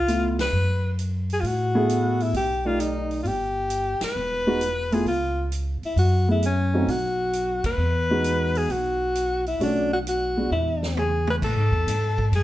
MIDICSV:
0, 0, Header, 1, 6, 480
1, 0, Start_track
1, 0, Tempo, 453515
1, 558, Time_signature, 4, 2, 24, 8
1, 13159, End_track
2, 0, Start_track
2, 0, Title_t, "Alto saxophone"
2, 0, Program_c, 0, 65
2, 0, Note_on_c, 0, 65, 84
2, 373, Note_off_c, 0, 65, 0
2, 430, Note_on_c, 0, 71, 76
2, 979, Note_off_c, 0, 71, 0
2, 1408, Note_on_c, 0, 68, 72
2, 1485, Note_on_c, 0, 65, 54
2, 1501, Note_off_c, 0, 68, 0
2, 1546, Note_on_c, 0, 66, 75
2, 1562, Note_off_c, 0, 65, 0
2, 2357, Note_on_c, 0, 64, 67
2, 2373, Note_off_c, 0, 66, 0
2, 2493, Note_off_c, 0, 64, 0
2, 2502, Note_on_c, 0, 67, 81
2, 2817, Note_on_c, 0, 65, 69
2, 2833, Note_off_c, 0, 67, 0
2, 2968, Note_on_c, 0, 63, 64
2, 2984, Note_off_c, 0, 65, 0
2, 3395, Note_off_c, 0, 63, 0
2, 3417, Note_on_c, 0, 65, 57
2, 3459, Note_on_c, 0, 67, 84
2, 3475, Note_off_c, 0, 65, 0
2, 4255, Note_off_c, 0, 67, 0
2, 4276, Note_on_c, 0, 71, 86
2, 5224, Note_on_c, 0, 68, 71
2, 5240, Note_off_c, 0, 71, 0
2, 5367, Note_off_c, 0, 68, 0
2, 5373, Note_on_c, 0, 65, 69
2, 5784, Note_off_c, 0, 65, 0
2, 6197, Note_on_c, 0, 64, 63
2, 6324, Note_off_c, 0, 64, 0
2, 6338, Note_on_c, 0, 66, 72
2, 6633, Note_off_c, 0, 66, 0
2, 6679, Note_on_c, 0, 64, 76
2, 6805, Note_off_c, 0, 64, 0
2, 6833, Note_on_c, 0, 61, 72
2, 7305, Note_on_c, 0, 66, 77
2, 7321, Note_off_c, 0, 61, 0
2, 8100, Note_off_c, 0, 66, 0
2, 8106, Note_on_c, 0, 71, 92
2, 9074, Note_on_c, 0, 68, 83
2, 9090, Note_off_c, 0, 71, 0
2, 9220, Note_on_c, 0, 66, 77
2, 9235, Note_off_c, 0, 68, 0
2, 10018, Note_off_c, 0, 66, 0
2, 10030, Note_on_c, 0, 64, 62
2, 10162, Note_off_c, 0, 64, 0
2, 10188, Note_on_c, 0, 62, 85
2, 10480, Note_off_c, 0, 62, 0
2, 10509, Note_on_c, 0, 66, 68
2, 10573, Note_off_c, 0, 66, 0
2, 10673, Note_on_c, 0, 66, 68
2, 11105, Note_off_c, 0, 66, 0
2, 11139, Note_on_c, 0, 64, 63
2, 11577, Note_off_c, 0, 64, 0
2, 11630, Note_on_c, 0, 68, 78
2, 11921, Note_off_c, 0, 68, 0
2, 11963, Note_on_c, 0, 71, 78
2, 12024, Note_off_c, 0, 71, 0
2, 12113, Note_on_c, 0, 69, 86
2, 13014, Note_off_c, 0, 69, 0
2, 13072, Note_on_c, 0, 68, 68
2, 13159, Note_off_c, 0, 68, 0
2, 13159, End_track
3, 0, Start_track
3, 0, Title_t, "Grand piano"
3, 0, Program_c, 1, 0
3, 82, Note_on_c, 1, 57, 49
3, 84, Note_on_c, 1, 59, 41
3, 86, Note_on_c, 1, 64, 44
3, 87, Note_on_c, 1, 65, 51
3, 374, Note_off_c, 1, 57, 0
3, 375, Note_off_c, 1, 59, 0
3, 376, Note_off_c, 1, 64, 0
3, 377, Note_off_c, 1, 65, 0
3, 1847, Note_on_c, 1, 57, 66
3, 1852, Note_on_c, 1, 59, 62
3, 1854, Note_on_c, 1, 68, 77
3, 1855, Note_on_c, 1, 64, 67
3, 2448, Note_off_c, 1, 57, 0
3, 2450, Note_off_c, 1, 59, 0
3, 2451, Note_off_c, 1, 64, 0
3, 2451, Note_off_c, 1, 68, 0
3, 2807, Note_on_c, 1, 57, 45
3, 2808, Note_on_c, 1, 74, 45
3, 2813, Note_on_c, 1, 63, 44
3, 2813, Note_on_c, 1, 67, 46
3, 3408, Note_off_c, 1, 57, 0
3, 3408, Note_off_c, 1, 74, 0
3, 3411, Note_off_c, 1, 63, 0
3, 3411, Note_off_c, 1, 67, 0
3, 4726, Note_on_c, 1, 56, 55
3, 4728, Note_on_c, 1, 59, 55
3, 4732, Note_on_c, 1, 63, 48
3, 4737, Note_on_c, 1, 66, 66
3, 4862, Note_off_c, 1, 56, 0
3, 4864, Note_off_c, 1, 59, 0
3, 4866, Note_off_c, 1, 63, 0
3, 4868, Note_off_c, 1, 66, 0
3, 5203, Note_on_c, 1, 57, 60
3, 5210, Note_on_c, 1, 59, 52
3, 5210, Note_on_c, 1, 64, 56
3, 5215, Note_on_c, 1, 65, 56
3, 5341, Note_off_c, 1, 57, 0
3, 5344, Note_off_c, 1, 59, 0
3, 5345, Note_off_c, 1, 64, 0
3, 5347, Note_off_c, 1, 65, 0
3, 6645, Note_on_c, 1, 57, 50
3, 6651, Note_on_c, 1, 59, 45
3, 6654, Note_on_c, 1, 64, 41
3, 6656, Note_on_c, 1, 68, 53
3, 6783, Note_off_c, 1, 57, 0
3, 6786, Note_off_c, 1, 59, 0
3, 6787, Note_off_c, 1, 64, 0
3, 6788, Note_off_c, 1, 68, 0
3, 7130, Note_on_c, 1, 57, 53
3, 7132, Note_on_c, 1, 60, 51
3, 7134, Note_on_c, 1, 63, 51
3, 7140, Note_on_c, 1, 66, 52
3, 7265, Note_off_c, 1, 57, 0
3, 7267, Note_off_c, 1, 60, 0
3, 7267, Note_off_c, 1, 63, 0
3, 7270, Note_off_c, 1, 66, 0
3, 8575, Note_on_c, 1, 56, 52
3, 8577, Note_on_c, 1, 59, 48
3, 8580, Note_on_c, 1, 63, 48
3, 8584, Note_on_c, 1, 66, 54
3, 9174, Note_off_c, 1, 56, 0
3, 9175, Note_off_c, 1, 59, 0
3, 9176, Note_off_c, 1, 63, 0
3, 9178, Note_off_c, 1, 66, 0
3, 10165, Note_on_c, 1, 57, 56
3, 10168, Note_on_c, 1, 61, 49
3, 10170, Note_on_c, 1, 62, 54
3, 10176, Note_on_c, 1, 66, 63
3, 10458, Note_off_c, 1, 57, 0
3, 10459, Note_off_c, 1, 61, 0
3, 10460, Note_off_c, 1, 62, 0
3, 10463, Note_off_c, 1, 66, 0
3, 10973, Note_on_c, 1, 56, 46
3, 10976, Note_on_c, 1, 59, 44
3, 10979, Note_on_c, 1, 62, 40
3, 10982, Note_on_c, 1, 66, 53
3, 11108, Note_off_c, 1, 56, 0
3, 11110, Note_off_c, 1, 59, 0
3, 11111, Note_off_c, 1, 62, 0
3, 11113, Note_off_c, 1, 66, 0
3, 13159, End_track
4, 0, Start_track
4, 0, Title_t, "Upright bass"
4, 0, Program_c, 2, 32
4, 0, Note_on_c, 2, 37, 76
4, 514, Note_off_c, 2, 37, 0
4, 555, Note_on_c, 2, 42, 67
4, 1474, Note_off_c, 2, 42, 0
4, 1512, Note_on_c, 2, 45, 76
4, 2432, Note_off_c, 2, 45, 0
4, 2471, Note_on_c, 2, 35, 72
4, 3391, Note_off_c, 2, 35, 0
4, 3432, Note_on_c, 2, 31, 73
4, 4200, Note_off_c, 2, 31, 0
4, 4394, Note_on_c, 2, 28, 73
4, 5314, Note_off_c, 2, 28, 0
4, 5350, Note_on_c, 2, 37, 78
4, 6119, Note_off_c, 2, 37, 0
4, 6311, Note_on_c, 2, 42, 78
4, 7233, Note_off_c, 2, 42, 0
4, 7271, Note_on_c, 2, 35, 75
4, 8040, Note_off_c, 2, 35, 0
4, 8085, Note_on_c, 2, 39, 62
4, 8224, Note_off_c, 2, 39, 0
4, 8230, Note_on_c, 2, 40, 79
4, 9153, Note_off_c, 2, 40, 0
4, 9196, Note_on_c, 2, 35, 79
4, 10116, Note_off_c, 2, 35, 0
4, 10157, Note_on_c, 2, 35, 79
4, 11077, Note_off_c, 2, 35, 0
4, 11124, Note_on_c, 2, 40, 80
4, 12040, Note_off_c, 2, 40, 0
4, 12084, Note_on_c, 2, 45, 74
4, 12237, Note_off_c, 2, 45, 0
4, 12237, Note_on_c, 2, 44, 45
4, 12390, Note_off_c, 2, 44, 0
4, 12396, Note_on_c, 2, 40, 64
4, 12547, Note_off_c, 2, 40, 0
4, 12560, Note_on_c, 2, 44, 81
4, 13026, Note_off_c, 2, 44, 0
4, 13039, Note_on_c, 2, 42, 75
4, 13159, Note_off_c, 2, 42, 0
4, 13159, End_track
5, 0, Start_track
5, 0, Title_t, "Muted upright bass strokes"
5, 4243, Note_on_c, 9, 29, 30
5, 4349, Note_off_c, 9, 29, 0
5, 6158, Note_on_c, 9, 29, 33
5, 6264, Note_off_c, 9, 29, 0
5, 13159, End_track
6, 0, Start_track
6, 0, Title_t, "Drums"
6, 87, Note_on_c, 9, 42, 46
6, 192, Note_off_c, 9, 42, 0
6, 413, Note_on_c, 9, 38, 66
6, 414, Note_on_c, 9, 51, 45
6, 519, Note_off_c, 9, 38, 0
6, 520, Note_off_c, 9, 51, 0
6, 1044, Note_on_c, 9, 42, 43
6, 1150, Note_off_c, 9, 42, 0
6, 1372, Note_on_c, 9, 46, 34
6, 1478, Note_off_c, 9, 46, 0
6, 1529, Note_on_c, 9, 46, 37
6, 1635, Note_off_c, 9, 46, 0
6, 2005, Note_on_c, 9, 42, 47
6, 2111, Note_off_c, 9, 42, 0
6, 2333, Note_on_c, 9, 46, 29
6, 2438, Note_off_c, 9, 46, 0
6, 2480, Note_on_c, 9, 46, 40
6, 2586, Note_off_c, 9, 46, 0
6, 2962, Note_on_c, 9, 42, 46
6, 3068, Note_off_c, 9, 42, 0
6, 3289, Note_on_c, 9, 46, 29
6, 3395, Note_off_c, 9, 46, 0
6, 3444, Note_on_c, 9, 46, 32
6, 3549, Note_off_c, 9, 46, 0
6, 3916, Note_on_c, 9, 42, 47
6, 4022, Note_off_c, 9, 42, 0
6, 4243, Note_on_c, 9, 38, 61
6, 4244, Note_on_c, 9, 51, 57
6, 4349, Note_off_c, 9, 38, 0
6, 4350, Note_off_c, 9, 51, 0
6, 4878, Note_on_c, 9, 42, 48
6, 4984, Note_off_c, 9, 42, 0
6, 5209, Note_on_c, 9, 46, 35
6, 5315, Note_off_c, 9, 46, 0
6, 5360, Note_on_c, 9, 46, 33
6, 5465, Note_off_c, 9, 46, 0
6, 5840, Note_on_c, 9, 42, 46
6, 5946, Note_off_c, 9, 42, 0
6, 6171, Note_on_c, 9, 46, 28
6, 6277, Note_off_c, 9, 46, 0
6, 6322, Note_on_c, 9, 46, 38
6, 6428, Note_off_c, 9, 46, 0
6, 6801, Note_on_c, 9, 42, 44
6, 6906, Note_off_c, 9, 42, 0
6, 7285, Note_on_c, 9, 46, 41
6, 7391, Note_off_c, 9, 46, 0
6, 7762, Note_on_c, 9, 42, 43
6, 7868, Note_off_c, 9, 42, 0
6, 8086, Note_on_c, 9, 51, 61
6, 8088, Note_on_c, 9, 36, 67
6, 8192, Note_off_c, 9, 51, 0
6, 8194, Note_off_c, 9, 36, 0
6, 8724, Note_on_c, 9, 42, 46
6, 8829, Note_off_c, 9, 42, 0
6, 9052, Note_on_c, 9, 46, 34
6, 9157, Note_off_c, 9, 46, 0
6, 9205, Note_on_c, 9, 46, 33
6, 9310, Note_off_c, 9, 46, 0
6, 9689, Note_on_c, 9, 42, 43
6, 9795, Note_off_c, 9, 42, 0
6, 10017, Note_on_c, 9, 46, 29
6, 10123, Note_off_c, 9, 46, 0
6, 10171, Note_on_c, 9, 46, 38
6, 10277, Note_off_c, 9, 46, 0
6, 10655, Note_on_c, 9, 42, 49
6, 10761, Note_off_c, 9, 42, 0
6, 11135, Note_on_c, 9, 47, 35
6, 11241, Note_off_c, 9, 47, 0
6, 11460, Note_on_c, 9, 38, 58
6, 11565, Note_off_c, 9, 38, 0
6, 11611, Note_on_c, 9, 48, 50
6, 11717, Note_off_c, 9, 48, 0
6, 11931, Note_on_c, 9, 48, 66
6, 12037, Note_off_c, 9, 48, 0
6, 12090, Note_on_c, 9, 36, 69
6, 12094, Note_on_c, 9, 49, 60
6, 12196, Note_off_c, 9, 36, 0
6, 12200, Note_off_c, 9, 49, 0
6, 12416, Note_on_c, 9, 36, 40
6, 12522, Note_off_c, 9, 36, 0
6, 12572, Note_on_c, 9, 44, 63
6, 12572, Note_on_c, 9, 51, 63
6, 12678, Note_off_c, 9, 44, 0
6, 12678, Note_off_c, 9, 51, 0
6, 12895, Note_on_c, 9, 36, 54
6, 13001, Note_off_c, 9, 36, 0
6, 13048, Note_on_c, 9, 51, 51
6, 13154, Note_off_c, 9, 51, 0
6, 13159, End_track
0, 0, End_of_file